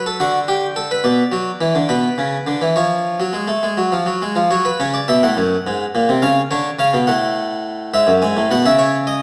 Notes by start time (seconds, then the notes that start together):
Already playing: F#3
0.06 A4
0.20 D3 F#4
0.48 G4
0.76 A4
0.91 B4
1.04 B2 D5
1.32 F#3
1.61 E3
1.75 D3
1.89 B2 B4
2.18 C#3
2.47 D3
2.62 E3
2.76 F3 C#5
3.20 F#3
3.33 G#3
3.48 A3
3.63 G#3
3.77 F#3
3.92 F3
4.06 F#3
4.22 G#3
4.35 F3
4.51 F#3 C#5
4.65 B4
4.80 C#3 C#5
4.94 D5
5.08 B2 E5
5.23 A2 F#5
5.37 F#2
5.67 G#2
5.95 A#2
6.09 C3
6.22 C#3 F5
6.51 D3 C#5
6.79 C#3 F5
6.94 B2
7.07 A2 F#5
7.94 G#2 E5
8.07 F#2
8.22 G#2 G#5
8.37 A2
8.51 B2 F#5
8.65 C#3 E5
8.79 C#5
9.07 D#5